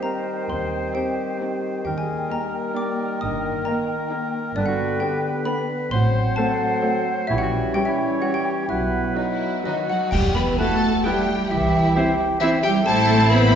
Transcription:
Already playing: bassoon D#3, french horn section G3 D#4, oboe C5, flute G5
0.03 viola section C4, violin section D#4 G4, clarinet A#4, xylophone A#5
0.49 cello section D#2, double bass section D#2, french horn section C4, clarinet C5, xylophone C6
0.94 viola section C4, violin section D#4 G4, clarinet G4, xylophone G5
1.41 viola section C4, violin section D#4 G4
1.84 cello section D#2, double bass section D#2, bassoon D#3, french horn section G3 A#3, clarinet G4, oboe A#4, xylophone G5, flute G5
1.96 clarinet G#4, xylophone G#5
2.29 viola section A#3, violin section D#4 G4, clarinet A#4, xylophone A#5
2.74 viola section A#3, violin section G4, clarinet D5, xylophone D6
2.78 violin section D#4
3.21 double bass section G1, cello section G2, french horn section D#3, clarinet D#5, xylophone D#6
3.65 viola section A#3, violin section D#4 G4, clarinet A#4, xylophone A#5
4.12 viola section A#3, violin section D#4 G4
4.56 double bass section G1, cello section G2, french horn section D3 B3, bassoon D3, clarinet D4, oboe B4, xylophone D5, flute G5
4.66 clarinet F#4, xylophone F#5
5.00 viola section B3, violin section D4 G4, clarinet G4, xylophone G5
5.45 viola section B3, violin section D4 G4, clarinet B4, xylophone B5
5.91 double bass section A1, cello section A2, french horn section F#3 C4, bassoon F#3, oboe C5, clarinet C5, flute F#5, xylophone C6
6.36 viola section A3, violin section C4 F#4, clarinet A4, xylophone A5
6.84 viola section A3, violin section C4 F#4
7.27 double bass section A#1, cello section A#2, bassoon E3, french horn section G3 C#4, clarinet E4, oboe C#5, xylophone E5, flute G5
7.38 xylophone F#5
7.42 clarinet F#4
7.74 bassoon E3, viola section G3, violin section C#4 E4, clarinet G4, oboe C#5, flute G5, xylophone G5
7.85 clarinet E4, xylophone E5
8.21 viola section G3, violin section C#4 E4, clarinet F#4, xylophone F#5
8.33 clarinet G4, xylophone G5
8.68 double bass section B1, cello section B2, bassoon F#3, french horn section F#3 B3, clarinet E4, oboe B4, xylophone E5, flute F#5
9.16 viola section F#3, bassoon F#3, clarinet D#4, violin section D#4 F#4, oboe B4, xylophone D#5, flute F#5
9.30 violin section E4
9.65 cello section D#3, french horn section D#3, viola section F#3, violin section D#4 F#4 D#5, flute D#5, xylophone D#5
9.90 french horn section F#3, cello section F#3, violin section F#4 F#5, xylophone F#5, flute F#5
10.11 double bass section E2, cello section G3, french horn section G3, violin section G4 G5, xylophone G5, flute G5, concert bass drum, crash
10.35 cello section B3, french horn section B3, violin section B4 B5, xylophone B5, flute B5
10.58 cello section A3, french horn section A3, viola section B3 E4, clarinet E4, bassoon F#4, violin section A4 A5, oboe B4, flute A5, xylophone A5
11.04 cello section G3, french horn section G3, viola section B3 E4, clarinet E4, bassoon E4, violin section G4 G5, oboe B4, xylophone G5, flute G5
11.50 double bass section C2, french horn section E3, cello section E3, violin section E4 E5, bassoon G4, flute E5, xylophone E5
11.95 viola section C4 E4, clarinet E4, bassoon G4, oboe C5
12.40 cello section E3, french horn section E3, viola section C4 E4, clarinet E4, violin section E4 E5, bassoon E4, oboe C5, xylophone E5, flute E5
12.63 french horn section G3, cello section G3, violin section G4 G5, flute G5, xylophone G5
12.85 double bass section A1, french horn section A3, cello section A3, viola section C4 E4, clarinet E4, violin section A4 A5, oboe C5, xylophone A5, flute A5
13.30 french horn section B3, cello section B3, violin section B4 B5, xylophone B5, flute B5

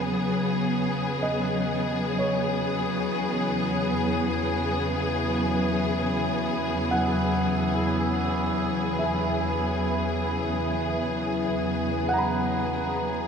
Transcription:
Already playing: double bass section E2, string section C#3 F#3 B3 G#4, felt piano B4
1.21 double bass section E2, synth drone E3 E4, felt piano D#5
2.19 felt piano C#5
6.91 felt piano F#5
8.99 felt piano E5
9.04 felt piano G#5
12.09 felt piano F#5
12.14 felt piano A#5
12.18 felt piano B5

